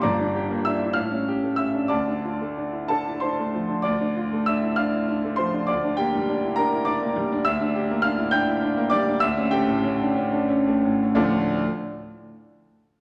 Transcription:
\new Staff \with { instrumentName = "Grand piano" } { \time 6/8 \key d \minor \tempo 4. = 65 << { <d'' bes'' d'''>4 <e'' e'''>8 <f'' f'''>4 <e'' e'''>8 | <d'' a'' d'''>4. <a' a''>8 <c'' c'''>4 | <d'' d'''>4 <e'' e'''>8 <f'' f'''>4 <c'' c'''>8 | <d'' d'''>8 <g' g''>4 <bes' bes''>8 <d'' d'''>4 |
<e'' e'''>4 <f'' f'''>8 <g'' g'''>4 <d'' d'''>8 | <e'' e'''>8 <g' g''>4 r4. | <d, a, f a d' f' d''>8 r2 r8 | } \\ { <g,, g,>16 d'16 g'16 bes16 d'16 e'16 a,16 cis'16 g'16 a16 cis'16 d'16 | d,16 d'16 f'16 a16 d'16 e'16 d'16 e'16 d'16 a16 f16 d'16 | d,16 d'16 f'16 a16 d'16 e'16 d'16 e'16 d'16 a16 f16 d'16 | d,16 d'16 bes16 g16 d'16 e'16 d'16 e'16 d'16 bes16 g16 d'16 |
d,16 d'16 g'16 bes16 d'16 e'16 d'16 e'16 d'16 bes16 g16 d'16 | d,16 cis'16 a16 a,16 cis'16 d'16 cis'16 d'16 cis'16 a16 a,16 cis'16 | r2. | } >> }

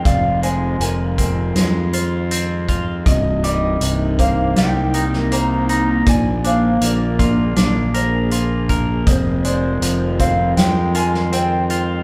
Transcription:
<<
  \new Staff \with { instrumentName = "Electric slide guitar" } { \time 4/4 \key f \dorian \tempo 4 = 80 f''8 aes''8 aes''2 r4 | ees''8 ees''4 f''8 g''4 bes''8 bes''8 | aes''8 f''8 d''2 r4 | c''8 c''4 f''8 g''8 aes''8 g''4 | }
  \new Staff \with { instrumentName = "Felt piano" } { \time 4/4 \key f \dorian d''8 c''8 bes'8 bes'4 c''4 r8 | ees''8 d'''4 c''4 bes'8 c''4 | d''8 c''8 bes'8 bes'4 c''4 r8 | ees''8 d''4 c''4 bes'8 c''4 | }
  \new Staff \with { instrumentName = "Clean electric guitar" } { \time 4/4 \key f \dorian <f, aes c' f'>8 aes8 f8 c'8 aes8 f'8 c'8 f'8 | c,8 g8 c8 bes8 g8 ees'8 bes8 ees'8 | bes,8 d'8 bes8 f'8 d'8 bes'8 f'8 bes'8 | f,8 aes8 f8 c'8 aes8 f'8 c'8 f'8 | }
  \new Staff \with { instrumentName = "Ambient pad" } { \clef bass \time 4/4 \key f \dorian << { <ees f'>1 | <c ees'>1 | <d aes'>1 | <ees f'>1 | } \\ { aes1 | bes1~ | bes1 | aes1 | } >> }
  \new Staff \with { instrumentName = "Fingered electric bass" } { \clef bass \time 4/4 \key f \dorian f,,4 f,,4 f,2 | c,,4 c,,4 c,2 | bes,,4 bes,,4 bes,,2 | f,,4 f,,4 f,2 | }
  \new DrumStaff \with { instrumentName = "Drums" } \drummode { \time 4/4 <hh bd>8 hh8 hh8 <hh bd>8 <hh sn>8 hh8 hh8 <hh bd>8 | <hh bd>8 hh8 hh8 <hh bd>8 <hh sn>8 hh16 sn16 hh8 hh8 | <hh bd>8 hh8 hh8 <hh bd>8 <hh sn>8 hh8 hh8 <hh bd>8 | <hh bd>8 hh8 hh8 <hh bd>8 <hh sn>8 hh16 sn16 hh8 hh8 | }
>>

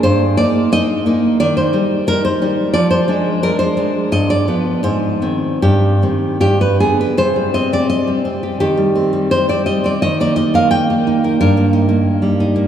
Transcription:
\new Staff \with { instrumentName = "Nylon-string guitar" } { \time 2/4 \key ees \major \tempo 4 = 87 << { c''8 d''8 ees''4 | \key c \minor d''16 c''8. bes'16 c''8. | d''16 c''8. bes'16 c''8. | ees''16 d''8. c''4 |
g'4 g'16 b'16 aes'16 b'16 | c''8 ees''16 d''16 ees''4 | g'4 c''16 d''16 ees''16 d''16 | ees''16 d''16 ees''16 f''16 g''4 |
bes'4 r4 | } \\ { g,8 <bes ees'>8 <bes ees'>8 <bes ees'>8 | ees8 <g ees'>8 <g ees'>8 <g ees'>8 | f8 <aes d'>8 <aes d'>8 <aes d'>8 | g,8 <f b>8 aes,8 <ees c'>8 |
g,8 <ees c'>8 g,8 <d b>8 | c16 g16 c'16 g'8 g16 c'16 g'16 | ees16 g16 c'16 g8 c'16 g16 c'16 | ees16 bes16 ees'16 bes'8 bes16 ees'16 bes'16 |
g,16 bes16 ees'16 bes8 g16 ees'16 bes16 | } >> }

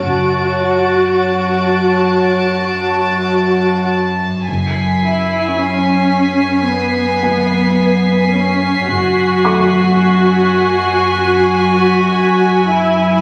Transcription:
<<
  \new Staff \with { instrumentName = "Violin section" } { \time 4/4 \key fis \minor \tempo 4 = 55 << { d''''2.~ d''''8 r8 | bis'''1~ | bis'''2~ bis'''8 r4. | } \\ { cis''2.~ cis''8 r8 | b'''1~ | b'''2.~ b'''8 r8 | } >> }
  \new Staff \with { instrumentName = "Felt piano" } { \time 4/4 \key fis \minor r1 | r2 r8 gis''4.~ | gis''8 <a' cis'''>2. r8 | }
  \new Staff \with { instrumentName = "Violin section" } { \time 4/4 \key fis \minor a''1 | gis''1 | gis''1 | }
  \new Staff \with { instrumentName = "Viola section" } { \time 4/4 \key fis \minor fis'2.~ fis'8 r8 | r8 e'8 cis'4 b4. cis'8 | fis'2.~ fis'8 e'8 | }
  \new Staff \with { instrumentName = "Cello section" } { \clef bass \time 4/4 \key fis \minor fis,1 | fis,1 | fis,1 | }
  \new Staff \with { instrumentName = "Double bass section" } { \clef bass \time 4/4 \key fis \minor fis,,4 r2. | fis,,4 r2. | fis,,4 r2. | }
>>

